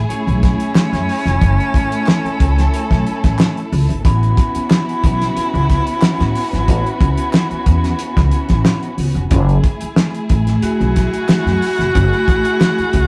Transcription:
Already playing: string section A3 E4 G#4
0.09 baritone saxophone C#4, muted upright bass stroke, closed hi-hat
0.27 upright bass B1, closed hi-hat
0.43 kick, snare, closed hi-hat
0.60 closed hi-hat
0.75 snare, clap
0.93 upright bass F#2, snare, closed hi-hat
1.09 open hi-hat
1.26 upright bass F1, snare, closed hi-hat
1.42 upright bass F#1, string section A4, kick, closed hi-hat
1.60 closed hi-hat
1.74 upright bass A1, kick, closed hi-hat
1.92 closed hi-hat
2.06 snare, clap
2.24 muted upright bass stroke, closed hi-hat
2.40 upright bass C#2, kick, closed hi-hat
2.58 snare, closed hi-hat
2.74 closed hi-hat
2.91 upright bass B1, kick, snare, closed hi-hat
3.07 closed hi-hat
3.24 upright bass A1, kick, snare, closed hi-hat
3.39 snare, clap
3.57 closed hi-hat
3.72 upright bass C#2, open hi-hat
3.89 upright bass G#1, closed hi-hat
4.05 upright bass A1, string section B3 C#4 F#4, baritone saxophone E4, kick, closed hi-hat
4.23 closed hi-hat
4.37 kick, closed hi-hat
4.55 muted upright bass stroke, closed hi-hat
4.70 snare, clap
4.89 closed hi-hat
5.04 upright bass B1, kick, closed hi-hat
5.21 snare, closed hi-hat
5.37 muted upright bass stroke, closed hi-hat
5.54 upright bass C#2, closed hi-hat
5.70 kick, snare, closed hi-hat
5.87 closed hi-hat
6.02 snare, clap
6.20 upright bass A2, snare, closed hi-hat
6.35 open hi-hat
6.53 upright bass G#1, snare, closed hi-hat
6.68 upright bass A1, kick, closed hi-hat
6.86 closed hi-hat
7.01 upright bass C#2, kick, closed hi-hat
7.17 closed hi-hat
7.33 snare, clap
7.51 muted upright bass stroke, closed hi-hat
7.66 upright bass E2, kick, closed hi-hat
7.84 snare, closed hi-hat
7.99 closed hi-hat
8.17 upright bass C#2, kick, snare, closed hi-hat
8.31 closed hi-hat
8.49 upright bass A1, kick, snare, closed hi-hat
8.65 snare, clap
8.83 closed hi-hat
8.98 upright bass C#2, open hi-hat
9.15 upright bass F1, closed hi-hat
9.31 upright bass F#1, string section A3 E4 G#4, kick, closed hi-hat
9.49 closed hi-hat
9.64 kick, closed hi-hat
9.81 muted upright bass stroke, closed hi-hat
9.96 snare, clap
10.15 closed hi-hat
10.29 upright bass A1, kick, closed hi-hat
10.47 snare, closed hi-hat
10.62 baritone saxophone F#4, muted upright bass stroke, closed hi-hat
10.80 upright bass B1, closed hi-hat
10.96 kick, snare, closed hi-hat
11.13 closed hi-hat
11.29 snare, clap
11.46 upright bass F#2, snare, closed hi-hat
11.62 open hi-hat
11.79 upright bass F1, snare, closed hi-hat
11.95 upright bass F#1, kick, closed hi-hat
12.13 closed hi-hat
12.28 upright bass A1, kick, closed hi-hat
12.45 closed hi-hat
12.61 snare, clap
12.78 muted upright bass stroke, closed hi-hat
12.93 upright bass C#2, kick, closed hi-hat

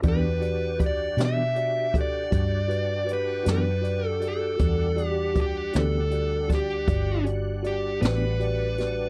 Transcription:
0.02 fingered electric bass E2, clean electric guitar E3 B3 D4 G4, tonewheel organ D4 F#4 G4, tine electric piano F#4 G4 D5, kick, closed hi-hat
0.08 lead electric guitar B4
0.40 tine electric piano F#4 G4 D5, closed hi-hat
0.78 tine electric piano F#4 G4 D5, kick, closed hi-hat
0.86 lead electric guitar D5
1.17 fingered electric bass B2, clean electric guitar E3 B3 D4 G4, tine electric piano F#4 G4 D5, snare, closed hi-hat
1.25 lead electric guitar E5
1.56 tine electric piano F#4 G4 D5, closed hi-hat
1.94 tine electric piano F#4 G4 A4, kick, closed hi-hat
2.01 lead electric guitar D5
2.31 fingered electric bass G2, tine electric piano F#4 G4 D5, kick, closed hi-hat
2.68 tine electric piano F#4 G4 B4, closed hi-hat
3.05 tine electric piano F#4 G4 B4, closed hi-hat
3.13 lead electric guitar B4
3.43 fingered electric bass F#2, clean electric guitar E3 B3 D4 G4, tine electric piano F#4 G4 D5, closed hi-hat
3.48 lead electric guitar B4, snare
3.82 tine electric piano F#4 G4 D5, closed hi-hat
4.07 lead electric guitar A4
4.20 tine electric piano F#4 G4 D5, closed hi-hat
4.28 lead electric guitar A4
4.57 fingered electric bass E2, tonewheel organ G3 D4, tine electric piano F#4 G4 A4, kick, closed hi-hat
4.61 tonewheel organ F#5
4.96 tine electric piano F#4 G4 D5, closed hi-hat
5.07 lead electric guitar G4
5.34 tine electric piano F#4 G4 D5, kick, closed hi-hat
5.41 lead electric guitar G4
5.73 fingered electric bass D2, clean electric guitar E3 B3 D4 G4, tine electric piano F#4 G4 D5, snare, closed hi-hat
5.79 lead electric guitar A4
6.11 tine electric piano F#4 G4 D5, closed hi-hat
6.48 tine electric piano F#4 G4 D5, kick, snare, closed hi-hat
6.55 lead electric guitar G4
6.88 fingered electric bass G1, tine electric piano F#4 G4 D5, kick, closed hi-hat
7.24 tine electric piano F#4 G4 D5, closed hi-hat
7.63 tine electric piano F#4 G4 D5, lead electric guitar G4, closed hi-hat
8.00 fingered electric bass A1, clean electric guitar E3 B3 D4 G4, tine electric piano F#4 G4 D5, lead electric guitar B4, closed hi-hat
8.05 snare
8.39 tine electric piano F#4 G4 D5, closed hi-hat
8.78 tine electric piano F#4 G4 D5, snare, closed hi-hat

